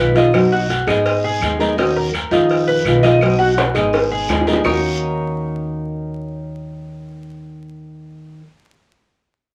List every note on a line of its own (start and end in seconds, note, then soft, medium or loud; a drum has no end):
0.00 0.82 B1 loud
0.00 0.15 D#3 medium
0.00 0.15 G#3 soft
0.00 0.14 D#4 medium
0.00 0.13 F4 medium
0.00 0.15 B4 medium
0.14 0.33 D#3 medium
0.14 0.34 G#3 medium
0.14 0.33 D#4 medium
0.14 0.33 F4 medium
0.14 0.51 D#5 medium
0.14 cowbell medium
0.14 short guiro medium
0.33 0.68 B2 medium
0.33 0.68 F#3 medium
0.33 0.68 B3 medium
0.33 0.69 D#4 medium
0.33 0.69 F#4 medium
0.33 cowbell loud
0.33 long guiro medium
0.33 claves medium
0.52 0.87 F#4 medium
0.69 muted nylon-string guitar stroke medium
0.69 cowbell medium
0.69 short guiro medium
0.87 1.37 G#1 loud
0.87 1.40 G#3 medium
0.87 1.40 B3 medium
0.87 1.42 D#4 medium
0.87 1.41 G#4 medium
0.87 1.23 D#5 medium
0.87 cowbell medium
0.87 short guiro medium
0.87 claves medium
1.06 cowbell loud
1.06 long guiro medium
1.24 1.59 G#4 medium
1.41 2.25 D#2 loud
1.41 1.59 G#3 soft
1.41 1.59 B3 medium
1.41 1.59 D#4 medium
1.41 1.58 G#4 medium
1.41 cowbell medium
1.41 short guiro medium
1.41 claves medium
1.59 1.76 G#3 medium
1.59 1.77 B3 medium
1.59 1.77 D#4 medium
1.59 1.77 G#4 medium
1.59 1.77 A#4 medium
1.59 short guiro medium
1.77 2.12 D#3 medium
1.77 2.13 A#3 medium
1.77 2.13 C#4 medium
1.77 1.95 D#4 medium
1.77 2.13 F#4 medium
1.77 cowbell loud
1.77 long guiro medium
1.96 2.31 A#4 medium
2.13 muted nylon-string guitar stroke medium
2.13 cowbell medium
2.13 short guiro medium
2.13 claves medium
2.31 2.81 F2 loud
2.31 2.83 D#3 medium
2.31 2.84 G#3 medium
2.31 2.66 D#4 medium
2.31 2.86 D#4 medium
2.31 2.85 F4 medium
2.31 cowbell medium
2.31 short guiro medium
2.49 cowbell medium
2.49 long guiro medium
2.67 3.02 B4 medium
2.85 3.69 B1 loud
2.85 3.02 D#3 soft
2.85 3.03 G#3 medium
2.85 3.03 D#4 soft
2.85 3.02 F4 medium
2.85 cowbell medium
2.85 short guiro medium
2.85 claves medium
3.03 3.22 D#3 medium
3.03 3.21 G#3 medium
3.03 3.21 D#4 medium
3.03 3.20 F4 medium
3.03 3.38 D#5 medium
3.03 cowbell medium
3.03 short guiro medium
3.21 3.56 B2 medium
3.21 3.55 F#3 medium
3.21 3.56 B3 medium
3.21 3.56 D#4 medium
3.21 3.56 F#4 medium
3.21 cowbell loud
3.21 long guiro medium
3.21 claves medium
3.39 3.74 F#4 medium
3.57 muted nylon-string guitar stroke medium
3.57 cowbell medium
3.57 high bongo loud
3.57 short guiro medium
3.74 4.25 G#1 medium
3.74 4.28 G#3 medium
3.74 4.29 B3 medium
3.74 4.29 D#4 medium
3.74 4.28 G#4 medium
3.74 4.10 D#5 medium
3.74 cowbell medium
3.74 short guiro medium
3.74 claves medium
3.93 cowbell loud
3.93 high bongo loud
3.93 long guiro medium
4.12 4.46 G#4 medium
4.28 4.60 D#2 medium
4.28 4.46 G#3 medium
4.28 4.47 B3 medium
4.28 4.47 D#4 medium
4.28 4.46 G#4 medium
4.28 cowbell medium
4.28 low bongo loud
4.28 short guiro medium
4.28 claves medium
4.41 low bongo medium
4.47 4.64 G#3 medium
4.47 4.65 B3 medium
4.47 4.65 D#4 medium
4.47 4.64 G#4 medium
4.47 4.63 A#4 medium
4.47 short guiro medium
4.53 low bongo loud
4.64 8.37 D#2 medium
4.64 8.41 D#3 medium
4.64 8.43 A#3 medium
4.64 8.44 C#4 medium
4.64 8.37 D#4 medium
4.64 8.37 A#4 medium
4.64 8.38 C#5 loud
4.64 low bongo medium
4.64 long guiro loud
4.64 claves loud
4.68 8.45 F#4 medium